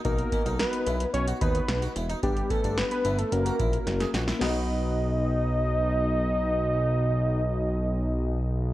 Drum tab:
CC |----------------|----------------|x---------------|----------------|
HH |xxxxxxxxxxxxxxxx|xxxxxxxxxxxxxxxx|----------------|----------------|
SD |----o-------o---|----o-------oooo|o---------------|----------------|
BD |o-o-------o-----|o-o-------o-----|----------------|----------------|